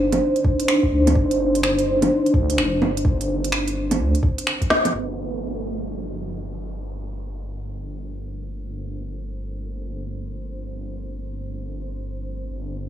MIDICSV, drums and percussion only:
0, 0, Header, 1, 2, 480
1, 0, Start_track
1, 0, Key_signature, -2, "minor"
1, 0, Tempo, 472441
1, 1179, Time_signature, 4, 2, 24, 8
1, 13098, End_track
2, 0, Start_track
2, 0, Title_t, "Drums"
2, 127, Note_on_c, 9, 42, 50
2, 127, Note_on_c, 9, 61, 48
2, 228, Note_off_c, 9, 42, 0
2, 228, Note_off_c, 9, 61, 0
2, 365, Note_on_c, 9, 42, 29
2, 453, Note_on_c, 9, 36, 92
2, 467, Note_off_c, 9, 42, 0
2, 554, Note_off_c, 9, 36, 0
2, 606, Note_on_c, 9, 42, 51
2, 694, Note_on_c, 9, 26, 96
2, 707, Note_off_c, 9, 42, 0
2, 796, Note_off_c, 9, 26, 0
2, 846, Note_on_c, 9, 36, 58
2, 948, Note_off_c, 9, 36, 0
2, 1089, Note_on_c, 9, 42, 49
2, 1089, Note_on_c, 9, 61, 51
2, 1173, Note_on_c, 9, 36, 108
2, 1190, Note_off_c, 9, 42, 0
2, 1190, Note_off_c, 9, 61, 0
2, 1275, Note_off_c, 9, 36, 0
2, 1333, Note_on_c, 9, 42, 43
2, 1434, Note_off_c, 9, 42, 0
2, 1576, Note_on_c, 9, 42, 52
2, 1660, Note_on_c, 9, 26, 97
2, 1678, Note_off_c, 9, 42, 0
2, 1762, Note_off_c, 9, 26, 0
2, 1815, Note_on_c, 9, 42, 42
2, 1916, Note_off_c, 9, 42, 0
2, 2055, Note_on_c, 9, 42, 51
2, 2055, Note_on_c, 9, 61, 50
2, 2157, Note_off_c, 9, 42, 0
2, 2157, Note_off_c, 9, 61, 0
2, 2299, Note_on_c, 9, 42, 29
2, 2377, Note_on_c, 9, 36, 94
2, 2401, Note_off_c, 9, 42, 0
2, 2478, Note_off_c, 9, 36, 0
2, 2537, Note_on_c, 9, 42, 52
2, 2623, Note_on_c, 9, 26, 92
2, 2639, Note_off_c, 9, 42, 0
2, 2725, Note_off_c, 9, 26, 0
2, 2863, Note_on_c, 9, 61, 64
2, 2964, Note_off_c, 9, 61, 0
2, 3020, Note_on_c, 9, 42, 51
2, 3097, Note_on_c, 9, 36, 111
2, 3121, Note_off_c, 9, 42, 0
2, 3199, Note_off_c, 9, 36, 0
2, 3260, Note_on_c, 9, 42, 43
2, 3361, Note_off_c, 9, 42, 0
2, 3500, Note_on_c, 9, 42, 54
2, 3579, Note_on_c, 9, 26, 98
2, 3601, Note_off_c, 9, 42, 0
2, 3681, Note_off_c, 9, 26, 0
2, 3735, Note_on_c, 9, 42, 43
2, 3836, Note_off_c, 9, 42, 0
2, 3974, Note_on_c, 9, 42, 51
2, 3974, Note_on_c, 9, 61, 50
2, 4076, Note_off_c, 9, 42, 0
2, 4076, Note_off_c, 9, 61, 0
2, 4215, Note_on_c, 9, 42, 32
2, 4296, Note_on_c, 9, 36, 92
2, 4316, Note_off_c, 9, 42, 0
2, 4398, Note_off_c, 9, 36, 0
2, 4454, Note_on_c, 9, 42, 54
2, 4541, Note_on_c, 9, 26, 95
2, 4555, Note_off_c, 9, 42, 0
2, 4642, Note_off_c, 9, 26, 0
2, 4689, Note_on_c, 9, 36, 57
2, 4692, Note_on_c, 9, 42, 29
2, 4778, Note_on_c, 9, 38, 88
2, 4791, Note_off_c, 9, 36, 0
2, 4793, Note_off_c, 9, 42, 0
2, 4880, Note_off_c, 9, 38, 0
2, 4929, Note_on_c, 9, 42, 56
2, 4929, Note_on_c, 9, 61, 52
2, 5031, Note_off_c, 9, 42, 0
2, 5031, Note_off_c, 9, 61, 0
2, 13098, End_track
0, 0, End_of_file